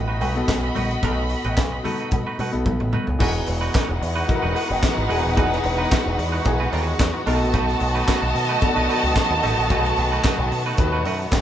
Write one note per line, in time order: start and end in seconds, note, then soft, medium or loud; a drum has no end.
0.00 0.21 A1 medium
0.00 0.35 B2 medium
0.00 0.36 B3 medium
0.00 0.36 D#4 medium
0.00 3.22 F4 medium
0.00 0.20 F#4 medium
0.00 2.90 F#4 medium
0.00 0.36 A4 loud
0.00 2.90 D#5 medium
0.00 2.90 B5 medium
0.08 0.20 A3 soft
0.08 0.19 D#4 soft
0.08 0.19 F#4 medium
0.08 0.19 B4 medium
0.21 0.41 B1 medium
0.21 0.36 A3 medium
0.21 0.35 D#4 medium
0.21 0.35 F#4 medium
0.21 0.34 B4 medium
0.21 open hi-hat medium
0.21 cowbell medium
0.21 muted conga soft
0.21 high conga medium
0.35 0.85 B2 medium
0.35 0.85 B3 medium
0.35 0.85 D#4 medium
0.35 0.86 A4 medium
0.35 muted clean electric guitar stroke soft
0.35 closed hi-hat soft
0.48 0.69 B1 loud
0.48 muted clean electric guitar stroke soft
0.48 kick loud
0.48 snare loud
0.48 clap medium
0.48 closed hi-hat medium
0.48 cowbell medium
0.48 high conga medium
0.63 muted clean electric guitar stroke soft
0.75 0.95 A#1 medium
0.75 0.91 A3 medium
0.75 0.90 D#4 medium
0.75 0.90 F#4 medium
0.75 0.89 B4 medium
0.75 open hi-hat medium
0.75 cowbell medium
0.75 muted conga soft
0.75 high conga medium
0.75 low conga medium
0.90 muted clean electric guitar stroke soft
0.90 closed hi-hat soft
1.02 1.34 B1 medium
1.02 1.63 B2 medium
1.02 1.24 A3 medium
1.02 1.63 B3 medium
1.02 1.63 D#4 medium
1.02 1.17 D#4 medium
1.02 1.17 F#4 medium
1.02 1.63 A4 medium
1.02 1.16 B4 medium
1.02 kick loud
1.02 closed hi-hat medium
1.02 cowbell medium
1.02 low conga medium
1.17 muted clean electric guitar stroke soft
1.29 muted clean electric guitar stroke soft
1.29 open hi-hat medium
1.44 1.58 A1 medium
1.44 1.56 A3 medium
1.44 1.56 D#4 medium
1.44 1.56 F#4 medium
1.44 1.56 B4 medium
1.44 closed hi-hat soft
1.57 1.78 B1 medium
1.57 muted clean electric guitar stroke soft
1.57 kick loud
1.57 snare loud
1.57 clap medium
1.57 closed hi-hat medium
1.57 cowbell medium
1.57 muted conga soft
1.72 muted clean electric guitar stroke soft
1.83 2.34 B2 medium
1.83 2.00 A3 medium
1.83 2.34 B3 medium
1.83 2.35 D#4 medium
1.83 1.99 D#4 medium
1.83 1.99 F#4 medium
1.83 2.35 A4 loud
1.83 1.99 B4 medium
1.83 open hi-hat medium
1.83 muted conga soft
1.83 high conga medium
1.83 low conga medium
1.98 2.11 A3 soft
1.98 2.11 D#4 medium
1.98 2.11 F#4 medium
1.98 2.10 B4 medium
1.98 closed hi-hat soft
2.11 2.23 B2 loud
2.11 muted clean electric guitar stroke soft
2.11 kick loud
2.11 closed hi-hat medium
2.11 cowbell medium
2.11 high conga medium
2.27 2.38 A3 medium
2.27 2.38 D#4 medium
2.27 2.37 F#4 medium
2.27 2.37 B4 medium
2.39 2.50 B2 loud
2.39 2.55 A3 medium
2.39 2.53 D#4 medium
2.39 2.52 F#4 loud
2.39 2.52 B4 loud
2.39 open hi-hat medium
2.39 cowbell medium
2.39 high conga medium
2.51 2.63 B1 medium
2.51 3.02 B2 medium
2.51 3.02 B3 medium
2.51 3.03 D#4 medium
2.51 3.03 A4 medium
2.51 muted clean electric guitar stroke soft
2.51 closed hi-hat soft
2.66 2.77 B1 medium
2.66 muted clean electric guitar stroke soft
2.66 kick loud
2.66 high tom medium
2.66 cowbell medium
2.66 high conga medium
2.80 2.90 A1 medium
2.80 muted clean electric guitar stroke soft
2.80 mid tom medium
2.93 3.09 A3 medium
2.93 3.07 D#4 medium
2.93 3.07 F#4 medium
2.93 3.06 B4 medium
2.93 mid tom medium
2.93 cowbell medium
2.93 muted conga soft
2.93 high conga medium
2.93 low conga medium
3.07 3.17 C#2 medium
3.07 muted clean electric guitar stroke soft
3.07 floor tom medium
3.19 3.41 E1 loud
3.19 3.99 E3 medium
3.19 7.22 E3 medium
3.19 3.36 G#3 medium
3.19 7.23 G#3 medium
3.19 7.23 B3 medium
3.19 4.00 D#4 medium
3.19 7.22 D#4 medium
3.19 7.23 D#4 medium
3.19 3.34 D#4 medium
3.19 4.00 F#4 medium
3.19 11.41 F#4 medium
3.19 3.34 F#4 loud
3.19 4.00 G#4 loud
3.19 7.23 B4 medium
3.19 3.33 B4 loud
3.19 7.23 F#5 medium
3.19 kick loud
3.19 crash loud
3.19 cowbell medium
3.34 muted clean electric guitar stroke soft
3.46 3.68 E1 loud
3.46 muted clean electric guitar stroke soft
3.46 open hi-hat medium
3.61 3.73 G#3 medium
3.61 3.73 D#4 medium
3.61 3.73 F#4 medium
3.61 3.72 B4 medium
3.74 3.90 G#3 medium
3.74 3.89 D#4 medium
3.74 3.89 F#4 loud
3.74 3.88 B4 medium
3.74 kick loud
3.74 snare loud
3.74 clap loud
3.74 closed hi-hat medium
3.74 cowbell medium
3.89 3.99 E1 medium
3.89 muted clean electric guitar stroke soft
4.02 4.22 E2 medium
4.02 muted clean electric guitar stroke soft
4.02 open hi-hat medium
4.15 4.27 G#3 medium
4.15 4.27 D#4 medium
4.15 4.27 F#4 medium
4.15 4.27 B4 medium
4.28 4.88 E3 medium
4.28 4.89 D#4 medium
4.28 4.89 F#4 medium
4.28 4.36 A#4 medium
4.28 muted clean electric guitar stroke soft
4.28 kick loud
4.28 closed hi-hat medium
4.28 cowbell medium
4.36 4.93 B4 medium
4.42 4.53 E1 medium
4.42 4.53 G#3 medium
4.42 4.53 D#4 medium
4.42 4.54 F#4 medium
4.42 4.54 B4 medium
4.54 4.71 G#3 loud
4.54 4.69 D#4 medium
4.54 4.69 F#4 loud
4.54 4.68 B4 loud
4.54 open hi-hat medium
4.54 cowbell medium
4.70 4.80 F#1 loud
4.70 muted clean electric guitar stroke soft
4.82 kick loud
4.82 snare loud
4.82 clap loud
4.82 closed hi-hat medium
4.82 cowbell medium
4.96 5.07 G#1 medium
4.96 muted clean electric guitar stroke soft
5.09 5.21 E1 medium
5.09 5.30 E3 medium
5.09 5.25 G#3 medium
5.09 5.30 D#4 medium
5.09 5.24 D#4 medium
5.09 5.30 F#4 medium
5.09 5.23 F#4 medium
5.09 5.31 G#4 loud
5.09 5.23 B4 loud
5.09 open hi-hat medium
5.09 cowbell medium
5.24 5.34 D#1 medium
5.24 muted clean electric guitar stroke soft
5.36 5.58 E1 loud
5.36 6.17 E3 medium
5.36 5.52 G#3 medium
5.36 5.51 D#4 medium
5.36 6.17 D#4 medium
5.36 6.17 F#4 medium
5.36 5.51 F#4 medium
5.36 6.17 G#4 loud
5.36 5.50 B4 medium
5.36 kick loud
5.36 closed hi-hat medium
5.36 cowbell medium
5.51 muted clean electric guitar stroke soft
5.51 snare soft
5.63 5.84 E1 loud
5.63 muted clean electric guitar stroke medium
5.63 open hi-hat medium
5.78 5.90 G#3 medium
5.78 5.90 D#4 soft
5.78 5.90 F#4 medium
5.78 5.89 B4 medium
5.91 6.07 G#3 medium
5.91 6.05 D#4 loud
5.91 6.05 F#4 medium
5.91 6.04 B4 medium
5.91 kick loud
5.91 snare loud
5.91 clap medium
5.91 closed hi-hat medium
5.91 cowbell medium
6.05 6.15 E1 loud
6.05 muted clean electric guitar stroke soft
6.18 6.38 E2 medium
6.18 muted clean electric guitar stroke soft
6.18 open hi-hat medium
6.32 6.44 G#3 medium
6.32 6.44 D#4 medium
6.32 6.44 F#4 medium
6.32 6.43 B4 medium
6.45 6.66 B1 loud
6.45 7.05 E3 medium
6.45 7.05 D#4 medium
6.45 7.06 F#4 medium
6.45 7.06 G#4 loud
6.45 muted clean electric guitar stroke soft
6.45 kick loud
6.45 closed hi-hat medium
6.45 cowbell medium
6.60 6.71 G#3 medium
6.60 6.71 D#4 medium
6.60 6.71 F#4 medium
6.60 6.71 B4 medium
6.72 6.93 D#2 loud
6.72 6.93 G#3 loud
6.72 6.87 D#4 loud
6.72 6.86 F#4 loud
6.72 6.86 B4 loud
6.72 open hi-hat medium
6.72 cowbell medium
6.87 muted clean electric guitar stroke soft
6.99 7.10 E2 loud
6.99 kick loud
6.99 snare loud
6.99 clap loud
6.99 closed hi-hat medium
6.99 cowbell medium
7.14 muted clean electric guitar stroke soft
7.26 7.41 B1 loud
7.26 8.13 B2 medium
7.26 11.41 D#3 medium
7.26 11.41 F#3 medium
7.26 7.47 A3 medium
7.26 11.41 A3 medium
7.26 8.13 B3 medium
7.26 11.41 B3 medium
7.26 8.14 D#4 medium
7.26 7.40 D#4 medium
7.26 11.41 F#4 loud
7.26 7.40 F#4 medium
7.26 8.14 A4 loud
7.26 7.40 B4 loud
7.26 11.41 D#5 medium
7.26 11.41 A5 loud
7.26 open hi-hat medium
7.26 cowbell medium
7.41 7.50 A#1 medium
7.41 muted clean electric guitar stroke soft
7.53 7.74 B1 loud
7.53 7.69 A3 medium
7.53 7.68 D#4 medium
7.53 7.67 F#4 medium
7.53 7.66 B4 loud
7.53 kick loud
7.53 closed hi-hat medium
7.53 cowbell medium
7.68 muted clean electric guitar stroke soft
7.68 snare soft
7.80 8.01 B1 loud
7.80 muted clean electric guitar stroke soft
7.80 open hi-hat medium
7.95 8.06 A3 medium
7.95 8.06 D#4 medium
7.95 8.06 F#4 medium
7.95 8.06 B4 medium
8.07 8.23 A3 medium
8.07 8.22 D#4 medium
8.07 8.21 F#4 loud
8.07 8.21 B4 loud
8.07 kick loud
8.07 snare loud
8.07 clap loud
8.07 closed hi-hat medium
8.07 cowbell medium
8.22 8.31 B1 medium
8.22 muted clean electric guitar stroke medium
8.35 8.55 B2 loud
8.35 muted clean electric guitar stroke soft
8.35 open hi-hat medium
8.49 8.61 A3 medium
8.49 8.61 D#4 medium
8.49 8.60 F#4 medium
8.49 8.60 B4 medium
8.61 9.21 B2 medium
8.61 9.22 B3 medium
8.61 8.69 D4 medium
8.61 9.22 A4 loud
8.61 muted clean electric guitar stroke soft
8.61 kick loud
8.61 closed hi-hat medium
8.61 cowbell medium
8.68 9.25 D#4 medium
8.76 8.86 B1 medium
8.76 8.88 A3 medium
8.76 8.87 D#4 medium
8.76 8.87 F#4 medium
8.76 8.87 B4 medium
8.89 9.04 A3 medium
8.89 9.04 D#4 medium
8.89 9.03 F#4 loud
8.89 9.03 B4 loud
8.89 open hi-hat medium
8.89 cowbell medium
9.03 9.13 C#2 medium
9.03 muted clean electric guitar stroke soft
9.15 kick loud
9.15 snare loud
9.15 clap loud
9.15 closed hi-hat medium
9.15 cowbell medium
9.31 9.40 D#2 loud
9.31 muted clean electric guitar stroke soft
9.42 9.54 A1 medium
9.42 9.63 B2 medium
9.42 9.58 A3 medium
9.42 9.63 B3 medium
9.42 9.63 D#4 medium
9.42 9.58 D#4 medium
9.42 9.57 F#4 medium
9.42 9.63 A4 medium
9.42 9.57 B4 medium
9.42 open hi-hat medium
9.42 cowbell medium
9.58 9.67 A#1 medium
9.58 muted clean electric guitar stroke soft
9.70 9.90 B1 loud
9.70 10.49 B2 medium
9.70 9.86 A3 medium
9.70 10.49 B3 medium
9.70 10.50 D#4 medium
9.70 9.85 D#4 medium
9.70 9.85 F#4 loud
9.70 9.77 G#4 medium
9.70 9.84 B4 medium
9.70 kick loud
9.70 closed hi-hat medium
9.70 cowbell medium
9.78 10.53 A4 medium
9.85 muted clean electric guitar stroke soft
9.85 snare soft
9.96 10.17 B1 loud
9.96 muted clean electric guitar stroke soft
9.96 open hi-hat medium
10.12 10.23 A3 medium
10.12 10.23 D#4 medium
10.12 10.23 F#4 medium
10.12 10.22 B4 medium
10.24 10.39 A3 medium
10.24 10.38 D#4 medium
10.24 10.38 F#4 medium
10.24 10.37 B4 loud
10.24 kick loud
10.24 snare loud
10.24 clap loud
10.24 closed hi-hat medium
10.24 cowbell medium
10.39 10.48 B1 loud
10.39 muted clean electric guitar stroke medium
10.51 10.71 B2 medium
10.51 muted clean electric guitar stroke soft
10.51 open hi-hat medium
10.66 10.77 A3 medium
10.66 10.77 D#4 medium
10.66 10.77 F#4 medium
10.66 10.76 B4 medium
10.77 11.06 D#2 loud
10.77 11.38 B2 medium
10.77 11.38 B3 medium
10.77 11.38 D#4 medium
10.77 11.38 B4 loud
10.77 muted clean electric guitar stroke soft
10.77 kick loud
10.77 closed hi-hat medium
10.77 cowbell medium
10.93 11.04 A3 medium
10.93 11.04 D#4 medium
10.93 11.03 F#4 medium
10.93 11.03 B4 medium
11.05 11.25 F#2 loud
11.05 11.21 A3 medium
11.05 11.20 D#4 medium
11.05 11.19 F#4 medium
11.05 11.19 B4 loud
11.05 open hi-hat medium
11.05 cowbell medium
11.20 muted clean electric guitar stroke soft
11.31 11.41 F#1 loud
11.31 muted clean electric guitar stroke soft
11.31 kick loud
11.31 snare loud
11.31 clap loud
11.31 closed hi-hat medium
11.31 cowbell medium